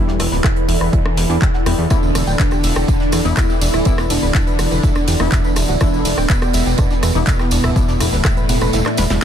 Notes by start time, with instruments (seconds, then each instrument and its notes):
Already playing: supersaw synth G2, synth stab E3 B3 E4, analog synth lead G3, ambient pad E4 A4 D5
0.08 analog synth bass E1, synth arpeggio sound D4 D5, snare
0.20 analog synth bass E1, supersaw synth E2, analog synth lead E3, synth arpeggio sound E4 E5, cross-stick, closed hi-hat, open hi-hat
0.32 analog synth bass D1, synth arpeggio sound B4 B5, snare
0.44 analog synth bass E1, synth arpeggio sound E4 E5, kick, cross-stick, snare, clap, closed hi-hat
0.56 synth arpeggio sound B4 B5, closed hi-hat
0.68 analog synth bass E1, synth arpeggio sound E4 E5, closed hi-hat, open hi-hat
0.81 analog synth bass E1, synth arpeggio sound B4 B5, cross-stick
0.93 analog synth bass E1, synth arpeggio sound E4 E5, kick, closed hi-hat
1.06 synth arpeggio sound D4 D5, cross-stick
1.17 analog synth bass E1, synth arpeggio sound B4 B5, snare, closed hi-hat, open hi-hat
1.30 analog synth bass E2, synth arpeggio sound D4 D5, closed hi-hat
1.42 analog synth bass E1, synth arpeggio sound G4 G5, kick, cross-stick, clap, closed hi-hat
1.54 synth arpeggio sound F#4 F#5, snare
1.66 analog synth bass E1, synth stab E3 B3 E4, synth arpeggio sound G5 G6, cross-stick, closed hi-hat, open hi-hat
1.78 analog synth bass E2, synth arpeggio sound B3 B4
1.90 analog synth bass E1, supersaw synth D3, synth stab E3 B3 E4, analog synth lead D4, synth arpeggio sound E4 E5, kick, cross-stick, closed hi-hat, tambourine
2.03 analog synth bass E1, tambourine
2.15 analog synth bass E1, synth arpeggio sound E4 E5, cross-stick, closed hi-hat, open hi-hat, ride, tambourine
2.27 analog synth bass D1, synth arpeggio sound G5 G6, tambourine
2.39 analog synth bass E1, supersaw synth D3, analog synth lead D4, synth arpeggio sound B4 B5, kick, snare, clap, closed hi-hat, tambourine
2.51 synth arpeggio sound G4 G5, cross-stick, closed hi-hat, tambourine
2.63 analog synth bass E1, synth arpeggio sound E5 E6, closed hi-hat, open hi-hat, ride, tambourine
2.76 analog synth bass E1, synth arpeggio sound G4 G5, cross-stick, tambourine
2.88 analog synth bass E1, synth arpeggio sound D4 D5, kick, closed hi-hat, tambourine
3.00 synth arpeggio sound D4 D5, snare, tambourine
3.12 analog synth bass E2, synth arpeggio sound E4 E5, cross-stick, closed hi-hat, open hi-hat, ride, tambourine
3.25 analog synth bass E1, synth stab E3 B3 E4, synth arpeggio sound D4 D5, tambourine
3.37 analog synth bass E1, supersaw synth E3, analog synth lead E4, synth arpeggio sound F#4 F#5, kick, cross-stick, snare, clap, closed hi-hat, tambourine
3.49 synth arpeggio sound G4 G5, snare, tambourine
3.61 analog synth bass E1, synth arpeggio sound D4 D5, closed hi-hat, open hi-hat, ride, tambourine
3.74 analog synth bass D1, synth arpeggio sound E4 E5, cross-stick, closed hi-hat, tambourine
3.85 analog synth bass E1, synth stab E3 B3 E4, synth arpeggio sound D4 D5, kick, closed hi-hat, tambourine
3.98 analog synth bass E1, synth arpeggio sound D4 D5, cross-stick, snare, tambourine
4.10 analog synth bass E1, supersaw synth D3, analog synth lead D4, synth arpeggio sound E4 E5, closed hi-hat, open hi-hat, ride, tambourine
4.23 analog synth bass D1, synth arpeggio sound B4 B5, tambourine
4.34 analog synth bass E1, synth arpeggio sound E4 E5, kick, cross-stick, snare, clap, closed hi-hat, tambourine
4.47 synth arpeggio sound B4 B5, closed hi-hat, tambourine
4.59 analog synth bass E1, synth arpeggio sound B3 B4, cross-stick, closed hi-hat, open hi-hat, ride, tambourine
4.71 analog synth bass E1, synth arpeggio sound B4 B5, tambourine
4.83 analog synth bass E1, synth arpeggio sound E4 E5, kick, closed hi-hat, tambourine
4.95 synth arpeggio sound D4 D5, cross-stick, tambourine
5.08 analog synth bass E2, synth arpeggio sound G4 G5, closed hi-hat, open hi-hat, ride, tambourine
5.20 analog synth bass E1, synth stab E3 B3 E4, synth arpeggio sound B3 B4, cross-stick, tambourine
5.32 analog synth bass E1, synth arpeggio sound E5 E6, kick, snare, clap, closed hi-hat, tambourine
5.44 synth arpeggio sound B4 B5, tambourine
5.56 analog synth bass E1, synth arpeggio sound E4 E5, cross-stick, closed hi-hat, open hi-hat, ride, tambourine
5.68 analog synth bass D1, synth arpeggio sound F#4 F#5, tambourine
5.80 analog synth bass E1, supersaw synth D3, synth stab E3 B3 E4, analog synth lead D4, synth arpeggio sound E4 E5, kick, cross-stick, closed hi-hat, tambourine
5.93 analog synth bass E1, tambourine
6.05 analog synth bass E1, synth arpeggio sound E4 E5, closed hi-hat, open hi-hat, ride, tambourine
6.18 analog synth bass D1, synth arpeggio sound G5 G6, cross-stick, tambourine
6.29 analog synth bass E1, supersaw synth B2, analog synth lead B3, synth arpeggio sound B4 B5, kick, snare, clap, closed hi-hat, tambourine
6.42 synth arpeggio sound G4 G5, cross-stick, closed hi-hat, tambourine
6.53 analog synth bass E1, synth arpeggio sound E5 E6, closed hi-hat, open hi-hat, ride, tambourine
6.66 analog synth bass E1, synth arpeggio sound G4 G5, tambourine
6.78 analog synth bass E1, synth arpeggio sound D4 D5, kick, cross-stick, closed hi-hat, tambourine
6.90 synth arpeggio sound D4 D5, snare, tambourine
7.03 analog synth bass E2, synth arpeggio sound E4 E5, cross-stick, closed hi-hat, open hi-hat, ride, tambourine
7.15 analog synth bass E1, synth stab E3 B3 E4, synth arpeggio sound D4 D5, tambourine
7.27 analog synth bass E1, supersaw synth B2, analog synth lead B3, synth arpeggio sound F#4 F#5, kick, snare, clap, closed hi-hat, tambourine
7.39 synth arpeggio sound G4 G5, cross-stick, snare, tambourine
7.51 analog synth bass E1, synth arpeggio sound D4 D5, closed hi-hat, open hi-hat, ride, tambourine
7.64 analog synth bass D1, synth arpeggio sound E4 E5, cross-stick, closed hi-hat, tambourine
7.76 analog synth bass E1, synth stab E3 B3 E4, synth arpeggio sound D4 D5, kick, closed hi-hat, tambourine
7.88 analog synth bass E1, synth arpeggio sound D4 D5, snare, tambourine
8.00 analog synth bass E1, supersaw synth A2, analog synth lead A3, synth arpeggio sound E4 E5, cross-stick, closed hi-hat, open hi-hat, ride, tambourine
8.13 analog synth bass D1, synth arpeggio sound B4 B5, snare, tambourine
8.24 analog synth bass E1, synth arpeggio sound E4 E5, kick, cross-stick, snare, clap, closed hi-hat, tambourine
8.37 synth arpeggio sound B4 B5, closed hi-hat, tambourine
8.49 analog synth bass E1, synth arpeggio sound B3 B4, closed hi-hat, open hi-hat, ride, tambourine
8.61 analog synth bass E1, synth arpeggio sound B4 B5, cross-stick, tambourine
8.73 analog synth bass E1, synth arpeggio sound E4 E5, snare, closed hi-hat, tambourine
8.85 synth arpeggio sound D4 D5, cross-stick, clap, tambourine
8.97 analog synth bass E1, synth arpeggio sound B4 B5, snare, closed hi-hat, open hi-hat, ride, tambourine
9.10 analog synth bass E1, synth arpeggio sound E4 E5, snare, closed hi-hat, tambourine